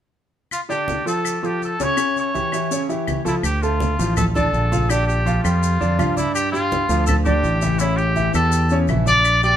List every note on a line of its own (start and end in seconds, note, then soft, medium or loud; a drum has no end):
0.51 0.60 F4 medium
0.51 high conga soft
0.51 claves medium
0.51 maracas medium
0.69 0.99 D3 medium
0.69 1.00 D4 medium
0.69 1.04 G4 medium
0.69 1.00 D5 medium
0.69 high conga soft
0.69 maracas soft
0.88 high conga medium
0.88 maracas soft
1.06 1.36 F3 medium
1.06 1.36 F4 medium
1.06 1.36 A4 medium
1.06 1.47 A4 medium
1.06 maracas medium
1.25 high conga soft
1.25 claves medium
1.25 maracas medium
1.43 1.73 F3 medium
1.43 1.73 F4 medium
1.43 1.63 G4 medium
1.43 1.73 A4 medium
1.43 high conga soft
1.43 maracas soft
1.62 1.84 A4 medium
1.62 high conga soft
1.62 maracas soft
1.80 1.95 C#3 medium
1.80 1.95 C#4 medium
1.80 1.95 C#5 medium
1.80 2.18 C#5 loud
1.80 high conga medium
1.80 maracas medium
1.97 2.27 C#3 medium
1.97 2.28 C#4 medium
1.97 2.28 C#5 medium
1.97 high conga soft
1.97 claves medium
1.97 maracas medium
2.16 2.87 C#5 medium
2.16 high conga soft
2.16 maracas soft
2.34 2.49 E3 medium
2.34 2.49 E4 medium
2.34 2.50 G4 medium
2.34 high conga medium
2.34 maracas soft
2.52 2.68 E3 medium
2.52 2.68 E4 medium
2.52 2.68 G4 medium
2.52 claves medium
2.52 maracas medium
2.71 2.86 C#3 medium
2.71 2.86 C#4 medium
2.71 2.87 C#5 medium
2.71 high conga soft
2.71 maracas medium
2.89 3.19 E3 medium
2.89 3.19 E4 medium
2.89 3.19 G4 medium
2.89 high conga soft
2.89 maracas soft
3.07 high conga medium
3.07 claves medium
3.07 maracas soft
3.25 3.40 F3 medium
3.25 3.35 E4 medium
3.25 3.40 F4 medium
3.25 3.40 A4 medium
3.25 high conga medium
3.25 maracas medium
3.43 3.94 D2 medium
3.43 3.63 G4 medium
3.43 claves medium
3.43 maracas medium
3.62 3.93 A3 medium
3.62 4.16 F4 medium
3.62 3.93 A4 medium
3.62 3.93 A5 medium
3.62 high conga soft
3.62 maracas soft
3.80 high conga medium
3.80 maracas soft
3.99 4.50 A1 medium
3.99 4.29 F3 medium
3.99 4.29 F4 medium
3.99 4.29 F5 medium
3.99 maracas medium
4.17 4.25 A4 medium
4.17 high conga soft
4.17 low conga medium
4.17 claves medium
4.17 maracas medium
4.34 4.65 D3 medium
4.34 4.65 D4 medium
4.34 4.91 A4 medium
4.34 4.65 D5 medium
4.34 high conga soft
4.34 low conga medium
4.34 maracas soft
4.53 5.39 A#1 medium
4.53 high conga soft
4.53 maracas soft
4.72 4.87 F3 medium
4.72 4.87 F4 medium
4.72 4.87 F5 medium
4.72 high conga medium
4.72 maracas medium
4.90 5.20 D3 medium
4.90 5.20 D4 medium
4.90 5.06 G4 medium
4.90 5.20 D5 medium
4.90 high conga soft
4.90 claves medium
4.90 maracas medium
5.07 5.41 G4 medium
5.07 high conga soft
5.07 maracas soft
5.26 5.41 F3 medium
5.26 5.41 F4 medium
5.26 5.41 F5 medium
5.26 high conga medium
5.26 maracas soft
5.44 5.78 F2 medium
5.44 5.74 G3 medium
5.44 6.13 F4 medium
5.44 5.74 G4 medium
5.44 5.74 G5 medium
5.44 claves medium
5.44 maracas medium
5.63 high conga soft
5.63 maracas medium
5.80 5.98 F2 medium
5.80 5.95 D3 medium
5.80 5.96 D4 medium
5.80 5.96 D5 medium
5.80 high conga soft
5.80 maracas soft
5.98 6.85 G2 medium
5.98 6.14 F3 medium
5.98 6.14 F4 medium
5.98 6.14 F5 medium
5.98 high conga medium
5.98 claves medium
5.98 maracas soft
6.17 6.47 D4 medium
6.17 6.34 E4 medium
6.17 6.47 D5 medium
6.17 6.47 D6 medium
6.17 high conga medium
6.17 maracas medium
6.35 6.51 G4 medium
6.35 high conga soft
6.35 claves medium
6.35 maracas medium
6.52 6.83 G3 medium
6.52 7.03 F4 medium
6.52 6.83 G4 medium
6.52 6.83 G5 medium
6.52 high conga soft
6.52 maracas soft
6.72 high conga medium
6.72 maracas soft
6.89 7.40 D2 loud
6.89 7.19 F3 medium
6.89 7.20 F4 medium
6.89 7.20 F5 medium
6.89 maracas medium
7.06 7.15 A4 medium
7.06 high conga soft
7.06 low conga medium
7.06 claves medium
7.06 maracas medium
7.25 7.56 D3 medium
7.25 7.56 D4 medium
7.25 7.81 G4 medium
7.25 7.56 D5 medium
7.25 high conga soft
7.25 low conga medium
7.25 maracas soft
7.44 8.29 A1 loud
7.44 high conga soft
7.44 maracas soft
7.62 7.77 E3 medium
7.62 7.77 E4 medium
7.62 7.77 E5 medium
7.62 high conga medium
7.62 maracas medium
7.79 8.10 C#3 medium
7.79 8.10 C#4 medium
7.79 7.98 E4 medium
7.79 8.11 C#5 medium
7.79 high conga soft
7.79 claves medium
7.79 maracas medium
7.97 8.34 G4 medium
7.97 high conga soft
7.97 maracas soft
8.16 8.31 E3 medium
8.16 8.31 E4 medium
8.16 8.32 E5 medium
8.16 high conga medium
8.16 maracas soft
8.34 8.85 E2 loud
8.34 8.64 G3 medium
8.34 8.64 G4 medium
8.34 8.77 A4 medium
8.34 8.64 G5 medium
8.34 claves medium
8.34 maracas medium
8.52 maracas medium
8.69 8.86 C#3 medium
8.69 8.86 C#4 medium
8.69 8.86 C#5 medium
8.69 maracas soft
8.88 9.57 A#1 medium
8.88 9.04 E3 medium
8.88 9.04 E4 medium
8.88 9.04 E5 medium
8.88 high conga medium
8.88 claves medium
8.88 maracas soft
9.06 9.36 D4 medium
9.06 9.37 D5 medium
9.06 9.41 D5 loud
9.06 9.37 D6 medium
9.06 high conga medium
9.06 maracas medium
9.25 high conga soft
9.25 claves medium
9.25 maracas medium
9.43 9.57 G3 medium
9.43 9.57 G4 medium
9.43 9.57 D5 loud
9.43 9.57 G5 medium
9.43 high conga soft
9.43 maracas soft